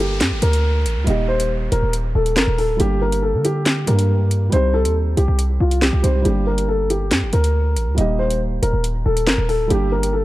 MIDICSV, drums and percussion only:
0, 0, Header, 1, 2, 480
1, 0, Start_track
1, 0, Key_signature, -2, "minor"
1, 0, Tempo, 431655
1, 1192, Time_signature, 4, 2, 24, 8
1, 11394, End_track
2, 0, Start_track
2, 0, Title_t, "Drums"
2, 229, Note_on_c, 9, 42, 86
2, 231, Note_on_c, 9, 38, 105
2, 234, Note_on_c, 9, 39, 80
2, 340, Note_off_c, 9, 42, 0
2, 342, Note_off_c, 9, 38, 0
2, 345, Note_off_c, 9, 39, 0
2, 467, Note_on_c, 9, 42, 79
2, 578, Note_off_c, 9, 42, 0
2, 592, Note_on_c, 9, 42, 74
2, 703, Note_off_c, 9, 42, 0
2, 954, Note_on_c, 9, 42, 75
2, 1065, Note_off_c, 9, 42, 0
2, 1190, Note_on_c, 9, 42, 73
2, 1301, Note_off_c, 9, 42, 0
2, 1554, Note_on_c, 9, 42, 82
2, 1665, Note_off_c, 9, 42, 0
2, 1912, Note_on_c, 9, 42, 71
2, 2023, Note_off_c, 9, 42, 0
2, 2149, Note_on_c, 9, 42, 89
2, 2261, Note_off_c, 9, 42, 0
2, 2512, Note_on_c, 9, 42, 68
2, 2624, Note_off_c, 9, 42, 0
2, 2631, Note_on_c, 9, 38, 122
2, 2633, Note_on_c, 9, 39, 104
2, 2742, Note_off_c, 9, 38, 0
2, 2745, Note_off_c, 9, 39, 0
2, 2874, Note_on_c, 9, 46, 58
2, 2985, Note_off_c, 9, 46, 0
2, 3111, Note_on_c, 9, 42, 76
2, 3222, Note_off_c, 9, 42, 0
2, 3474, Note_on_c, 9, 42, 85
2, 3585, Note_off_c, 9, 42, 0
2, 3832, Note_on_c, 9, 42, 73
2, 3943, Note_off_c, 9, 42, 0
2, 4069, Note_on_c, 9, 42, 85
2, 4071, Note_on_c, 9, 38, 103
2, 4074, Note_on_c, 9, 39, 86
2, 4180, Note_off_c, 9, 42, 0
2, 4182, Note_off_c, 9, 38, 0
2, 4185, Note_off_c, 9, 39, 0
2, 4307, Note_on_c, 9, 42, 80
2, 4419, Note_off_c, 9, 42, 0
2, 4433, Note_on_c, 9, 42, 77
2, 4544, Note_off_c, 9, 42, 0
2, 4793, Note_on_c, 9, 42, 74
2, 4904, Note_off_c, 9, 42, 0
2, 5030, Note_on_c, 9, 42, 75
2, 5141, Note_off_c, 9, 42, 0
2, 5395, Note_on_c, 9, 42, 84
2, 5506, Note_off_c, 9, 42, 0
2, 5754, Note_on_c, 9, 42, 72
2, 5865, Note_off_c, 9, 42, 0
2, 5991, Note_on_c, 9, 42, 87
2, 6102, Note_off_c, 9, 42, 0
2, 6353, Note_on_c, 9, 42, 70
2, 6465, Note_off_c, 9, 42, 0
2, 6472, Note_on_c, 9, 38, 124
2, 6475, Note_on_c, 9, 39, 100
2, 6583, Note_off_c, 9, 38, 0
2, 6586, Note_off_c, 9, 39, 0
2, 6715, Note_on_c, 9, 42, 80
2, 6826, Note_off_c, 9, 42, 0
2, 6952, Note_on_c, 9, 42, 73
2, 7063, Note_off_c, 9, 42, 0
2, 7316, Note_on_c, 9, 42, 82
2, 7427, Note_off_c, 9, 42, 0
2, 7674, Note_on_c, 9, 42, 70
2, 7785, Note_off_c, 9, 42, 0
2, 7910, Note_on_c, 9, 42, 86
2, 7912, Note_on_c, 9, 38, 106
2, 7915, Note_on_c, 9, 39, 84
2, 8021, Note_off_c, 9, 42, 0
2, 8023, Note_off_c, 9, 38, 0
2, 8026, Note_off_c, 9, 39, 0
2, 8148, Note_on_c, 9, 42, 78
2, 8259, Note_off_c, 9, 42, 0
2, 8273, Note_on_c, 9, 42, 74
2, 8384, Note_off_c, 9, 42, 0
2, 8634, Note_on_c, 9, 42, 73
2, 8746, Note_off_c, 9, 42, 0
2, 8871, Note_on_c, 9, 42, 74
2, 8982, Note_off_c, 9, 42, 0
2, 9235, Note_on_c, 9, 42, 82
2, 9346, Note_off_c, 9, 42, 0
2, 9593, Note_on_c, 9, 42, 73
2, 9704, Note_off_c, 9, 42, 0
2, 9830, Note_on_c, 9, 42, 89
2, 9941, Note_off_c, 9, 42, 0
2, 10194, Note_on_c, 9, 42, 68
2, 10305, Note_off_c, 9, 42, 0
2, 10311, Note_on_c, 9, 38, 119
2, 10314, Note_on_c, 9, 39, 102
2, 10423, Note_off_c, 9, 38, 0
2, 10425, Note_off_c, 9, 39, 0
2, 10554, Note_on_c, 9, 46, 57
2, 10665, Note_off_c, 9, 46, 0
2, 10791, Note_on_c, 9, 42, 74
2, 10902, Note_off_c, 9, 42, 0
2, 11155, Note_on_c, 9, 42, 86
2, 11266, Note_off_c, 9, 42, 0
2, 11394, End_track
0, 0, End_of_file